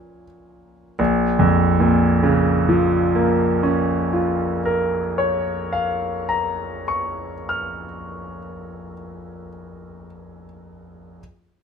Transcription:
Already playing: A#2 F3 C#4 F4 C#5 A#5
0.99 A#1
1.39 F2
1.80 A#2
2.23 C#3
2.69 F3
3.15 A#3
3.63 C#4
4.13 F4
4.65 A#4
5.18 C#5
5.73 F5
6.29 A#5
6.88 C#6
7.49 F6

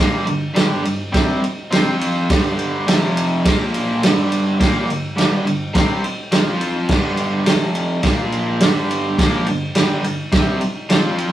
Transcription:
Already playing: A#2 F3 A#3
0.25 G2 D3, ride
0.54 G2 D3 G3, snare, ride
0.84 G2 D3, ride
1.12 C3 G3 C4, kick, snare, ride
1.42 muted overdriven electric guitar stroke, ride
1.71 F3 C4 F4, snare, ride
2.01 ride
2.30 G2 D3 G3, kick, snare, ride
2.59 ride
2.87 F2 C3 F3, snare, ride
3.17 ride
3.45 A#2 F3 A#3, kick, snare, ride
3.74 ride
4.03 G2 D3 G3, snare, ride
4.32 ride
4.59 A#2 F3 A#3, kick, snare, ride
4.87 G2 D3, ride
5.16 G2 D3 G3, snare, ride
5.45 G2 D3, ride
5.74 C3 G3 C4, kick, snare, ride
6.03 muted overdriven electric guitar stroke, ride
6.32 F3 C4 F4, snare, ride
6.61 ride
6.89 G2 D3 G3, kick, snare, crash
7.17 ride
7.46 F2 C3 F3, snare, ride
7.75 ride
8.03 A#2 F3 A#3, kick, snare, ride
8.32 ride
8.60 G2 D3 G3, snare, ride
8.91 ride
9.18 A#2 F3 A#3, kick, snare, ride
9.46 G2 D3, ride
9.75 G2 D3 G3, snare, ride
10.04 G2 D3, ride
10.32 C3 G3 C4, kick, snare, ride
10.61 muted overdriven electric guitar stroke, ride
10.90 F3 C4 F4, snare, ride
11.18 ride

